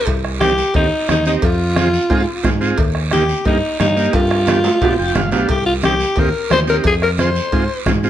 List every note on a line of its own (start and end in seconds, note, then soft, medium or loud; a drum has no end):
0.07 0.61 C2 loud
0.07 bombo low medium
0.07 cowbell loud
0.07 high conga soft
0.07 long guiro medium
0.25 bombo rim medium
0.40 0.53 C4 medium
0.40 0.53 D#4 medium
0.40 0.72 G4 loud
0.40 0.53 G4 medium
0.40 bombo rim medium
0.40 high conga medium
0.40 short guiro medium
0.58 short guiro medium
0.74 0.89 D#2 loud
0.74 0.87 C4 medium
0.74 0.87 D#4 medium
0.74 1.07 D#4 medium
0.74 0.88 G4 medium
0.74 bombo low medium
0.74 cowbell medium
0.74 high conga soft
0.74 long guiro medium
1.08 1.36 D#2 medium
1.08 1.15 C4 medium
1.08 1.15 D#4 medium
1.08 1.26 D#4 medium
1.08 1.15 G4 medium
1.08 bombo rim medium
1.08 high conga medium
1.08 short guiro medium
1.26 1.43 C4 medium
1.26 1.34 D#4 medium
1.26 1.43 D#4 medium
1.26 1.43 G4 medium
1.26 short guiro medium
1.42 1.97 F2 medium
1.42 2.58 F4 medium
1.42 bombo low medium
1.42 cowbell loud
1.42 high conga soft
1.42 long guiro medium
1.76 1.89 C4 medium
1.76 1.88 F4 medium
1.76 1.89 G#4 medium
1.76 bombo rim medium
1.76 high conga medium
1.76 short guiro medium
1.93 short guiro medium
2.10 2.24 G#2 loud
2.10 2.22 C4 medium
2.10 2.22 F4 medium
2.10 2.22 G#4 medium
2.10 bombo low medium
2.10 cowbell medium
2.10 high conga soft
2.10 long guiro medium
2.43 2.72 G#2 medium
2.43 2.50 C4 medium
2.43 2.50 F4 medium
2.43 2.50 G#4 medium
2.43 bombo low medium
2.43 bombo rim medium
2.43 high conga medium
2.43 low conga medium
2.43 low timbale medium
2.43 short guiro medium
2.61 2.78 C4 medium
2.61 2.78 F4 medium
2.61 2.78 G#4 medium
2.61 short guiro medium
2.78 3.32 D#2 medium
2.78 bombo low medium
2.78 cowbell loud
2.78 high conga soft
2.78 long guiro medium
2.95 bombo rim medium
3.11 3.24 A#3 medium
3.11 3.24 D#4 medium
3.11 3.44 G4 medium
3.11 3.24 G4 medium
3.11 bombo rim medium
3.11 high conga medium
3.11 short guiro medium
3.29 short guiro medium
3.45 3.59 G2 loud
3.45 3.57 A#3 medium
3.45 3.58 D#4 medium
3.45 3.78 D#4 medium
3.45 3.58 G4 medium
3.45 bombo low medium
3.45 cowbell medium
3.45 high conga soft
3.45 long guiro medium
3.80 4.07 G2 medium
3.80 3.86 A#3 medium
3.80 4.15 D#4 medium
3.80 3.86 D#4 medium
3.80 3.86 G4 medium
3.80 bombo rim medium
3.80 high conga medium
3.80 short guiro medium
3.96 4.13 A#3 medium
3.96 4.14 D#4 medium
3.96 4.14 G4 medium
3.96 short guiro medium
4.13 4.68 G2 medium
4.13 5.32 F4 medium
4.13 bombo low medium
4.13 cowbell loud
4.13 high conga soft
4.13 high timbale loud
4.13 long guiro medium
4.30 bombo rim medium
4.30 high timbale medium
4.47 4.59 B3 medium
4.47 4.60 D4 medium
4.47 4.60 G4 medium
4.47 bombo rim medium
4.47 high conga medium
4.47 high timbale loud
4.47 short guiro medium
4.64 low timbale loud
4.64 short guiro medium
4.81 4.95 B2 medium
4.81 4.93 B3 medium
4.81 4.94 D4 medium
4.81 4.94 G4 medium
4.81 bombo low medium
4.81 cowbell medium
4.81 high conga soft
4.81 low timbale medium
4.81 long guiro medium
4.99 5.14 F1 medium
4.99 5.14 G5 medium
5.15 5.31 G1 medium
5.15 5.21 B3 medium
5.15 5.21 D4 medium
5.15 5.21 G4 medium
5.15 5.31 F5 medium
5.15 bombo rim medium
5.15 high conga medium
5.15 low conga medium
5.15 short guiro medium
5.32 5.48 B1 medium
5.32 5.49 B3 medium
5.32 5.49 D4 medium
5.32 5.49 G4 medium
5.32 5.48 F5 medium
5.32 low timbale loud
5.32 short guiro medium
5.49 6.04 C2 medium
5.49 5.65 G4 medium
5.49 bombo low medium
5.49 cowbell loud
5.49 high conga soft
5.49 long guiro medium
5.66 5.74 F4 medium
5.82 5.95 C4 medium
5.82 5.95 D#4 medium
5.82 5.95 G4 medium
5.82 6.21 G4 medium
5.82 bombo rim medium
5.82 high conga medium
5.82 short guiro medium
6.00 short guiro medium
6.16 6.31 D#2 medium
6.16 6.29 C4 medium
6.16 6.29 D#4 medium
6.16 6.30 G4 medium
6.16 6.52 A#4 loud
6.16 bombo low medium
6.16 cowbell medium
6.16 high conga soft
6.16 long guiro medium
6.50 6.78 D#2 medium
6.50 6.56 C4 medium
6.50 6.57 D#4 medium
6.50 6.57 G4 medium
6.50 6.60 C5 loud
6.50 bombo rim medium
6.50 high conga medium
6.50 low timbale medium
6.50 short guiro medium
6.67 6.84 C4 medium
6.67 6.84 D#4 medium
6.67 6.85 G4 medium
6.67 6.77 A#4 medium
6.67 short guiro medium
6.84 7.39 F2 loud
6.84 6.94 G#4 loud
6.84 bombo low medium
6.84 cowbell loud
6.84 high conga soft
6.84 long guiro medium
7.02 7.10 A#4 loud
7.02 bombo rim medium
7.18 7.30 C4 medium
7.18 7.30 F4 medium
7.18 7.30 G#4 medium
7.18 7.83 C5 medium
7.18 bombo rim medium
7.18 high conga medium
7.18 short guiro medium
7.36 short guiro medium
7.52 7.66 G#2 loud
7.52 7.64 C4 medium
7.52 7.64 F4 medium
7.52 7.64 G#4 medium
7.52 bombo low medium
7.52 cowbell medium
7.52 high conga soft
7.52 long guiro medium
7.86 8.10 G#2 medium
7.86 7.92 C4 medium
7.86 7.92 F4 medium
7.86 7.92 G#4 medium
7.86 bombo low medium
7.86 bombo rim medium
7.86 high conga medium
7.86 low conga medium
7.86 low timbale medium
7.86 short guiro medium
8.03 8.10 C4 medium
8.03 8.10 F4 medium
8.03 8.10 G#4 medium
8.03 short guiro medium